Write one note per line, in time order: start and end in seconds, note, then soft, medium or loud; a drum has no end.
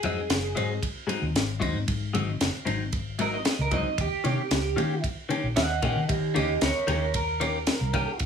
0.00 0.15 F2 medium
0.00 0.19 G#2 medium
0.00 0.80 G#4 loud
0.00 ride medium
0.04 0.20 F#3 medium
0.04 0.20 C4 medium
0.04 0.21 D#4 medium
0.30 0.53 F#1 medium
0.30 snare loud
0.30 ride medium
0.55 0.72 G#2 medium
0.55 0.79 G#2 medium
0.55 0.72 F#3 medium
0.55 0.73 C4 loud
0.55 0.73 D#4 loud
0.55 ride medium
0.83 kick medium
0.83 ride medium
1.07 1.24 G#2 medium
1.07 1.24 F#3 medium
1.07 1.25 C4 medium
1.07 1.25 D#4 medium
1.07 ride medium
1.22 1.33 D#2 medium
1.34 1.58 G#1 loud
1.34 snare loud
1.34 ride medium
1.60 1.73 D#2 medium
1.60 1.77 G#2 medium
1.60 1.77 F#3 medium
1.60 1.78 C4 loud
1.60 1.78 D#4 loud
1.60 kick medium
1.60 ride medium
1.74 1.86 G#2 medium
1.88 2.15 G#2 loud
1.88 kick loud
1.88 ride medium
2.13 2.37 G#1 loud
2.13 2.30 G#2 medium
2.13 2.30 F#3 medium
2.13 2.31 C4 loud
2.13 2.31 D#4 loud
2.13 ride medium
2.40 2.52 F#1 medium
2.40 snare loud
2.40 ride medium
2.55 muted fingered electric bass stroke soft
2.65 3.47 G#1 medium
2.65 2.82 G#2 medium
2.65 2.83 F#3 medium
2.65 2.83 C4 medium
2.65 2.83 D#4 loud
2.65 ride medium
2.92 kick medium
2.92 ride medium
3.19 3.35 G#2 medium
3.19 3.36 F#3 medium
3.19 3.36 C4 medium
3.19 3.37 D#4 medium
3.19 3.33 A#4 loud
3.19 ride medium
3.34 3.59 D#5 medium
3.45 snare loud
3.45 ride medium
3.59 3.82 C#2 medium
3.59 3.73 A#4 medium
3.71 3.88 G#2 medium
3.71 3.89 F#3 medium
3.71 3.89 C4 medium
3.71 3.89 D#4 medium
3.71 3.98 D#5 medium
3.71 kick medium
3.71 ride medium
3.98 4.10 D#2 loud
3.98 5.02 G4 loud
3.98 kick loud
3.98 ride medium
4.12 muted fingered electric bass stroke soft
4.24 4.36 C3 loud
4.24 4.41 D#3 medium
4.24 4.41 A#3 medium
4.24 4.41 C#4 medium
4.24 4.42 G4 medium
4.24 ride medium
4.50 4.74 C#2 medium
4.50 snare loud
4.50 ride medium
4.76 5.00 D#3 medium
4.76 4.93 D#3 medium
4.76 4.94 A#3 medium
4.76 4.94 C#4 medium
4.76 4.94 G4 loud
4.76 ride medium
5.04 kick medium
5.04 ride medium
5.29 5.46 D#3 medium
5.29 5.47 A#3 medium
5.29 5.47 C#4 medium
5.29 5.47 G4 loud
5.29 ride medium
5.43 5.55 A#1 medium
5.56 5.79 D#2 medium
5.56 5.82 D#5 medium
5.56 5.82 F#5 loud
5.56 snare loud
5.56 ride medium
5.82 5.95 A#1 medium
5.82 5.99 D#3 medium
5.82 5.99 A#3 medium
5.82 6.00 C#4 medium
5.82 6.00 G4 medium
5.82 6.07 D#5 medium
5.82 6.10 F#5 medium
5.82 kick medium
5.82 ride medium
5.96 6.08 D#3 medium
6.09 6.37 D#3 medium
6.09 6.34 G4 medium
6.09 6.35 D#5 medium
6.09 kick loud
6.09 ride medium
6.34 6.59 D#2 loud
6.34 6.51 D#3 medium
6.34 6.52 A#3 medium
6.34 6.52 C#4 medium
6.34 6.60 G4 medium
6.34 6.52 G4 medium
6.34 6.62 D#5 loud
6.34 ride medium
6.61 6.73 C#2 medium
6.61 6.86 A#4 medium
6.61 6.87 C#5 medium
6.61 snare loud
6.61 ride medium
6.75 muted fingered electric bass stroke soft
6.87 7.69 D#2 medium
6.87 7.04 D#3 medium
6.87 7.04 A#3 medium
6.87 7.05 C#4 medium
6.87 7.05 G4 medium
6.87 7.13 A#4 medium
6.87 7.14 C#5 medium
6.87 ride medium
7.14 8.18 A#4 loud
7.14 kick medium
7.14 ride medium
7.40 7.57 D#3 medium
7.40 7.57 A#3 medium
7.40 7.58 C#4 medium
7.40 7.58 G4 medium
7.40 ride medium
7.67 snare loud
7.67 ride medium
7.81 8.04 C2 loud
7.94 8.10 D#3 medium
7.94 8.10 A#3 medium
7.94 8.11 C#4 medium
7.94 8.11 G4 loud
7.94 kick medium
7.94 ride medium
8.19 8.26 A#1 medium
8.19 kick loud
8.19 ride medium